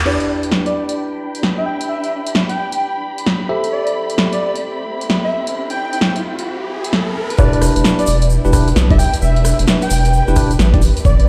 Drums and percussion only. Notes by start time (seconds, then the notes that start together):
0.06 crash
0.20 closed hi-hat
0.43 closed hi-hat
0.51 snare
0.66 closed hi-hat
0.89 closed hi-hat
1.35 closed hi-hat
1.43 snare
1.81 closed hi-hat
2.04 closed hi-hat
2.27 closed hi-hat
2.35 snare
2.49 closed hi-hat
2.72 closed hi-hat
3.18 closed hi-hat
3.26 snare
3.64 closed hi-hat
3.87 closed hi-hat
4.10 closed hi-hat
4.18 snare
4.33 closed hi-hat
4.56 closed hi-hat
5.01 closed hi-hat
5.10 snare
5.47 closed hi-hat
5.70 closed hi-hat
5.93 closed hi-hat
6.01 snare
6.16 closed hi-hat
6.39 closed hi-hat
6.84 closed hi-hat
6.93 snare
7.30 closed hi-hat
7.38 kick, shaker
7.53 closed hi-hat
7.62 cross-stick, open hi-hat, shaker
7.76 closed hi-hat, shaker
7.84 snare, shaker
7.99 closed hi-hat, shaker
8.07 open hi-hat, shaker
8.21 closed hi-hat, shaker
8.30 shaker
8.45 shaker
8.53 kick, cross-stick, open hi-hat, shaker
8.68 closed hi-hat, shaker
8.76 snare, shaker
8.91 kick, closed hi-hat
8.99 open hi-hat, shaker
9.14 closed hi-hat, shaker
9.22 shaker
9.36 closed hi-hat
9.45 cross-stick, open hi-hat, shaker
9.59 closed hi-hat, shaker
9.67 snare, shaker
9.82 closed hi-hat, shaker
9.90 open hi-hat, shaker
10.05 closed hi-hat, shaker
10.13 shaker
10.28 shaker
10.36 kick, cross-stick, open hi-hat, shaker
10.51 closed hi-hat, shaker
10.59 snare, shaker
10.74 kick, closed hi-hat
10.82 open hi-hat, shaker
10.97 closed hi-hat, shaker
11.05 kick, shaker
11.20 closed hi-hat